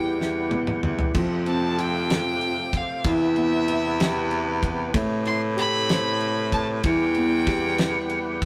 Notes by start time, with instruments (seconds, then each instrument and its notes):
Already playing: baritone saxophone E2, upright piano E3 E4 G4, tonewheel organ E3 G3 B3 G4, violin G5
0.19 upright piano E4, snare
0.51 upright piano B3, high tom
0.67 mid tom
0.83 baritone saxophone E2, upright piano E4, mid tom
0.99 floor tom
1.14 baritone saxophone F2, tonewheel organ C3 F3 A3 G4, upright piano F3, kick, crash
1.46 upright piano C4, violin A5, ride
1.78 upright piano F4, violin G5, ride
2.10 upright piano A4, snare, ride
2.41 ride
2.73 kick, ride
2.77 violin F5
3.04 baritone saxophone E2, tonewheel organ E3 B3, upright piano E3, violin E5, kick, ride
3.36 upright piano B3, ride
3.68 upright piano E4, ride
4.00 upright piano G4, snare, ride
4.31 ride
4.63 kick, ride
4.93 baritone saxophone A2, upright piano A3, tonewheel organ A3, kick, ride
5.25 upright piano E4, violin C6, ride
5.57 upright piano G4, violin B5, ride
5.88 upright piano C5, snare, ride
6.20 ride
6.52 violin A5, kick, ride
6.83 baritone saxophone E2, upright piano E3, tonewheel organ E3 G3 B3, violin G5, kick, ride
7.15 upright piano B3, ride
7.47 upright piano G4, kick, snare, ride
7.78 upright piano B4, snare, ride
8.10 ride
8.42 kick